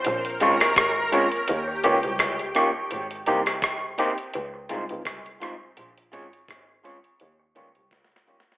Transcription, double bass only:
X:1
M:4/4
L:1/16
Q:"Swing 16ths" 1/4=84
K:Bbdor
V:1 name="Double bass" clef=bass
B,,,2 A,,,2 A,,,3 z E,, z D,, C,, D,,3 z | A,,,2 C,,4 z2 D,, z C,, D,, C,,4 | B,,,2 A,,,2 A,,,3 z E,, z D,, C,, D,,3 z |]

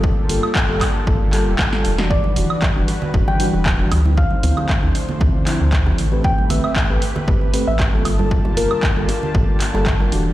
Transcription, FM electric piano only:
X:1
M:4/4
L:1/16
Q:"Swing 16ths" 1/4=116
K:Gmix
V:1 name="FM electric piano"
[G,_B,FA]2 [G,B,FA]3 [G,B,FA] z2 [G,B,FA]2 [G,B,FA] z2 [G,B,FA] z [E,G,D^F]- | [E,G,D^F]2 [E,G,DF]3 [E,G,DF] z2 [E,G,DF]2 [E,G,DF] z2 [E,G,DF] z [D,=F,CE]- | [D,F,CE]2 [D,F,CE]3 [D,F,CE] z2 [D,F,CE]2 [D,F,CE] z2 [D,F,CE] z [A,CGB]- | [A,CGB]2 [A,CGB]3 [A,CGB] z2 [A,CGB]2 [A,CGB] z2 [G,^A,F=A] z [G,_B,FA]- |
[G,_B,FA]2 [G,B,F_B]3 [G,B,FA] z2 [G,B,FA]2 z [G,B,FA]2 [G,B,FB] [E,G,D^F]2 |]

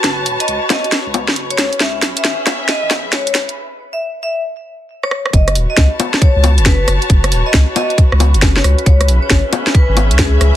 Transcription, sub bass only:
X:1
M:4/4
L:1/16
Q:"Swing 16ths" 1/4=136
K:F#dor
V:1 name="Sub bass" clef=bass
F,,,2 D,,, z C,, z4 C,,2 F,,,3 C,, z | C,,2 B,,, z G,,, z4 G,,,2 C,,3 C,, z | z16 | F,,,2 D,,, z C,, z4 C,,2 F,,,3 F,,, z |
F,,,2 D,,, z C,, z4 C,,2 F,,,3 C,, z | C,,2 B,,, z G,,, z4 G,,,2 C,,3 C,, z |]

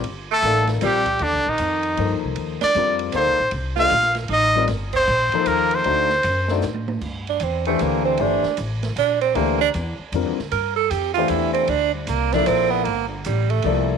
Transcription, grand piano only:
X:1
M:3/4
L:1/8
Q:"Swing" 1/4=154
K:Cdor
V:1 name="Grand piano"
z2 [B,EAdf]2 [G,CFBd] z | z4 [F,B,EAc]2- | [F,B,EAc] z [G,CFBd]2 [B,EAdf] z | z [A,DGce] z3 [G,CFBd] |
z3 [F,B,EAc]3 | [A,DE^Fc] z2 [A,DEFd] z2 | [K:Gdor] z3 [E,A,DGc]3 | [E,A,DGc] z4 z |
[E,A,DGc] z3 [D,G,CFB] z | z3 [E,A,DGc]3 | z3 [F,B,EAd]3 | z4 [F,B,EAd]2 |]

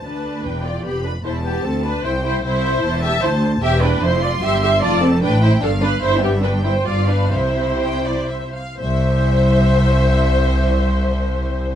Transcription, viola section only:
X:1
M:3/4
L:1/8
Q:1/4=149
K:C
V:1 name="Viola section"
B3 d G B | c G A B c c | c3 e c z | e B c d e e |
d A B c A B | c G B c d B | c4- c z | c6- |
c6 |]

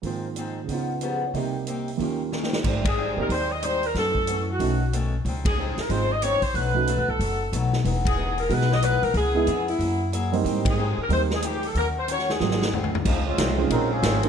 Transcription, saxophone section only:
X:1
M:4/4
L:1/8
Q:"Swing" 1/4=184
K:Dblyd
V:1 name="Saxophone section"
z8 | z8 | z A2 B c e c B | =A3 _G3 z2 |
z A2 B c e d c | =B3 =A3 z2 | z ^G2 B =B ^d B _B | A3 _F3 z2 |
z A2 B c A G =A | B c d A3 z2 | [K:Db] z8 |]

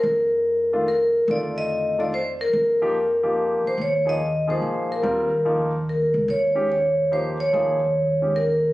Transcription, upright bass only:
X:1
M:3/4
L:1/8
Q:"Swing" 1/4=144
K:Eblyd
V:1 name="Upright bass" clef=bass
F,,6 | F,,6 | F,,4- F,, z | E,,4 B,,2 |
E,,4- E,, _D,, | E,,6 | E,,6 |]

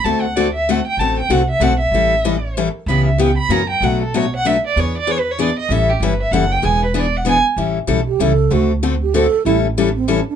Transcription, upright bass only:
X:1
M:3/4
L:1/8
Q:"Swing" 1/4=191
K:Amix
V:1 name="Upright bass" clef=bass
D,,6 | A,,,2 =C,,2 B,,,2 | A,,,6 | C,,4 F,,2 |
B,,,6 | E,,6 | A,,,2 G,,,2 F,,,2 | E,,,6 |
A,,,2 B,,,2 C,,2 | D,,6 | A,,,6 |]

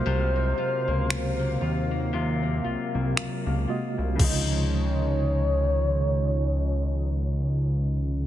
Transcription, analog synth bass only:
X:1
M:4/4
L:1/16
Q:"Swing 16ths" 1/4=58
K:Db
V:1 name="Analog synth bass" clef=bass
C,,2 z D,,3 E,,4 C,, C,, D,, D,, z C,, | D,,16 |]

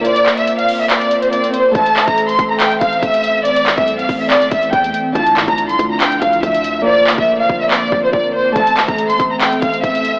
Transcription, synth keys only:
X:1
M:4/4
L:1/8
Q:1/4=141
K:Aphr
V:1 name="Synth keys"
[B,Fcd]6 [B,Fcd]2 | [A,Ace]8- | [A,Ace]8 | [D,DEF]8 |
[B,Fcd]6 [B,Fcd]2 | [A,Ace]8 |]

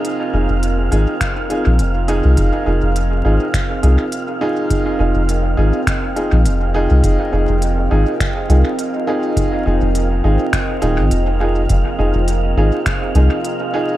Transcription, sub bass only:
X:1
M:4/4
L:1/16
Q:"Swing 16ths" 1/4=103
K:Fm
V:1 name="Sub bass" clef=bass
z2 F,,, F,,,3 A,,, z4 B,,, F,,,3 C,, | F,,, z F,,, F,,,3 A,,, z3 C,, z4 z | z2 F,,, F,,,3 A,,, z4 B,,, F,,,3 C,, | F,,, z F,,, F,,,3 A,,, z3 C,, z4 z |
z2 F,,, F,,,3 A,,, z3 E,,, A,,, F,,,4 | F,,, z F,,, F,,,3 A,,, z3 C,, z4 z |]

